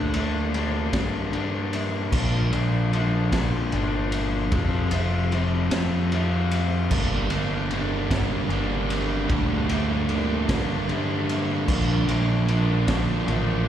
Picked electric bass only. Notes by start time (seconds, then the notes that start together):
Already playing: D2
0.93 G2
2.12 A#1
2.53 A#1
3.32 A#1
3.73 G1
4.52 F1
5.71 F2
6.91 G1
7.30 G1
8.10 G1
8.49 G1
9.29 D2
10.49 G2
11.68 A#1
12.07 A#1
12.88 A#1
13.27 A1